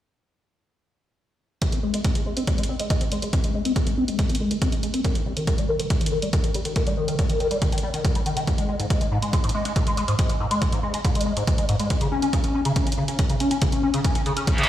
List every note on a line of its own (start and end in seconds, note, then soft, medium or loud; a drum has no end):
1.62 1.68 G#3 medium
1.62 kick loud
1.62 closed hi-hat medium
1.72 1.79 C4 medium
1.72 closed hi-hat soft
1.83 1.93 G#3 medium
1.94 2.00 G#3 medium
1.94 closed hi-hat soft
2.04 2.11 C4 medium
2.04 kick loud
2.04 closed hi-hat medium
2.15 2.25 G#3 medium
2.15 closed hi-hat soft
2.26 2.33 G#3 medium
2.37 2.43 C4 medium
2.37 closed hi-hat soft
2.47 2.57 G#3 medium
2.47 kick loud
2.47 closed hi-hat medium
2.58 2.65 G#3 medium
2.58 closed hi-hat soft
2.63 closed hi-hat medium
2.69 2.75 C4 medium
2.80 2.89 G#3 medium
2.80 closed hi-hat soft
2.90 2.97 G#3 medium
2.90 kick loud
2.90 closed hi-hat medium
3.01 3.08 C4 medium
3.01 closed hi-hat soft
3.12 3.22 G#3 medium
3.12 closed hi-hat soft
3.22 3.29 G#3 medium
3.22 closed hi-hat soft
3.33 3.40 C4 medium
3.33 kick loud
3.33 closed hi-hat medium
3.44 3.54 G#3 medium
3.44 closed hi-hat soft
3.55 3.61 G#3 medium
3.65 3.72 C4 medium
3.65 closed hi-hat soft
3.76 3.86 G#3 medium
3.76 kick loud
3.76 closed hi-hat medium
3.87 3.93 G#3 medium
3.87 closed hi-hat soft
3.97 4.04 C4 medium
4.08 4.18 G#3 medium
4.08 closed hi-hat soft
4.19 4.25 G#3 medium
4.19 kick loud
4.19 closed hi-hat medium
4.29 4.36 C4 medium
4.29 closed hi-hat soft
4.35 closed hi-hat medium
4.40 4.50 G#3 medium
4.51 4.58 G#3 medium
4.51 closed hi-hat soft
4.62 4.68 C4 medium
4.62 kick loud
4.62 closed hi-hat medium
4.72 4.82 G#3 medium
4.72 closed hi-hat soft
4.83 4.90 G#3 medium
4.83 closed hi-hat soft
4.94 5.00 C4 medium
4.94 closed hi-hat soft
5.04 5.14 D#3 medium
5.04 kick loud
5.04 closed hi-hat medium
5.15 5.22 D#3 medium
5.15 closed hi-hat soft
5.26 5.33 G3 medium
5.37 5.46 D#3 medium
5.37 closed hi-hat soft
5.47 5.54 D#3 medium
5.47 kick loud
5.47 closed hi-hat medium
5.58 5.65 G3 medium
5.58 closed hi-hat soft
5.69 5.79 D#3 medium
5.80 5.86 D#3 medium
5.80 closed hi-hat soft
5.90 5.97 G3 medium
5.90 kick loud
5.90 closed hi-hat medium
6.01 6.11 D#3 medium
6.01 closed hi-hat soft
6.06 closed hi-hat medium
6.12 6.18 D#3 medium
6.22 6.29 G3 medium
6.22 closed hi-hat soft
6.33 6.43 D#3 medium
6.33 kick loud
6.33 closed hi-hat medium
6.44 6.50 D#3 medium
6.44 closed hi-hat soft
6.54 6.61 G3 medium
6.54 closed hi-hat soft
6.65 6.75 D#3 medium
6.65 closed hi-hat soft
6.76 6.83 D#3 medium
6.76 kick loud
6.76 closed hi-hat medium
6.87 6.93 G3 medium
6.87 closed hi-hat soft
6.97 7.07 D#3 medium
7.08 7.15 D#3 medium
7.08 closed hi-hat soft
7.19 7.25 G3 medium
7.19 kick loud
7.19 closed hi-hat medium
7.30 7.39 D#3 medium
7.30 closed hi-hat soft
7.40 7.47 D#3 medium
7.40 closed hi-hat soft
7.51 7.58 G3 medium
7.51 closed hi-hat soft
7.62 7.71 D#3 medium
7.62 kick loud
7.62 closed hi-hat medium
7.72 7.79 D#3 medium
7.72 closed hi-hat soft
7.78 closed hi-hat medium
7.83 7.90 G3 medium
7.94 8.04 D#3 medium
7.94 closed hi-hat soft
8.05 8.11 D#3 medium
8.05 kick loud
8.05 closed hi-hat medium
8.15 8.22 G3 medium
8.15 closed hi-hat soft
8.26 8.36 D#3 medium
8.26 closed hi-hat soft
8.37 8.43 D#3 medium
8.37 closed hi-hat soft
8.47 8.54 G#2 loud
8.47 kick loud
8.47 closed hi-hat medium
8.58 8.68 G#3 medium
8.58 closed hi-hat soft
8.69 8.75 G#3 medium
8.79 8.86 G#2 loud
8.79 closed hi-hat soft
8.90 9.00 G#3 medium
8.90 kick loud
8.90 closed hi-hat medium
9.01 9.08 G#3 medium
9.01 closed hi-hat soft
9.12 9.18 G#2 loud
9.22 9.32 G#3 medium
9.22 closed hi-hat soft
9.33 9.40 G#3 medium
9.33 kick loud
9.33 closed hi-hat medium
9.44 9.50 G#2 loud
9.44 closed hi-hat soft
9.49 closed hi-hat medium
9.55 9.64 G#3 medium
9.65 9.72 G#3 medium
9.65 closed hi-hat soft
9.76 9.83 G#2 loud
9.76 kick loud
9.76 closed hi-hat medium
9.87 9.96 G#3 medium
9.87 closed hi-hat soft
9.97 10.04 G#3 medium
9.97 closed hi-hat soft
10.08 10.15 G#2 loud
10.08 closed hi-hat soft
10.19 10.29 G#3 medium
10.19 kick loud
10.19 closed hi-hat medium
10.29 10.36 G#3 medium
10.29 closed hi-hat soft
10.40 10.47 G#2 loud
10.51 10.61 G#3 medium
10.51 closed hi-hat soft
10.62 10.68 G#3 medium
10.62 kick loud
10.62 closed hi-hat medium
10.72 10.79 G#2 medium
10.72 closed hi-hat soft
10.83 10.93 G#3 medium
10.94 11.00 G#3 medium
10.94 closed hi-hat soft
11.05 11.11 G#2 loud
11.05 kick loud
11.05 closed hi-hat medium
11.15 11.25 G#3 medium
11.15 closed hi-hat soft
11.21 closed hi-hat medium
11.26 11.33 G#3 medium
11.37 11.43 G#2 loud
11.37 closed hi-hat soft
11.47 11.57 G#3 medium
11.47 kick loud
11.47 closed hi-hat medium
11.58 11.65 G#3 medium
11.58 closed hi-hat soft
11.69 11.75 G#2 loud
11.69 closed hi-hat soft
11.80 11.89 G#3 medium
11.80 closed hi-hat soft
11.90 11.97 C#4 medium
11.90 kick loud
11.90 closed hi-hat medium
12.01 12.08 C#3 loud
12.01 closed hi-hat medium
12.12 12.22 C#4 medium
12.22 12.29 C#4 medium
12.22 closed hi-hat soft
12.33 12.40 C#3 loud
12.33 kick loud
12.33 closed hi-hat medium
12.44 12.54 C#4 medium
12.44 closed hi-hat soft
12.55 12.61 C#4 medium
12.65 12.72 C#3 loud
12.65 closed hi-hat medium
12.76 12.86 C#4 medium
12.76 kick loud
12.76 closed hi-hat medium
12.87 12.93 C#4 medium
12.87 closed hi-hat soft
12.92 closed hi-hat medium
12.97 13.04 C#3 loud
13.08 13.18 C#4 medium
13.08 closed hi-hat medium
13.19 13.25 C#4 medium
13.19 kick loud
13.19 closed hi-hat medium
13.30 13.36 C#3 loud
13.30 closed hi-hat soft
13.40 13.50 C#4 medium
13.40 closed hi-hat soft
13.51 13.58 C#4 medium
13.51 closed hi-hat soft
13.62 13.68 C#3 loud
13.62 kick loud
13.62 closed hi-hat medium
13.72 13.82 C#4 medium
13.72 closed hi-hat medium
13.83 13.90 C#4 medium
13.94 14.00 C#3 loud
13.94 closed hi-hat medium
14.05 14.14 C#4 medium
14.05 kick loud
14.05 closed hi-hat medium
14.15 14.22 C#4 medium
14.15 closed hi-hat medium
14.26 14.33 C#3 loud
14.26 closed hi-hat soft
14.37 14.47 C#4 medium
14.37 closed hi-hat medium
14.47 14.54 C#4 medium
14.47 kick loud
14.47 closed hi-hat medium
14.47 reverse cymbal medium
14.58 14.65 C#3 loud
14.58 closed hi-hat soft
14.63 closed hi-hat medium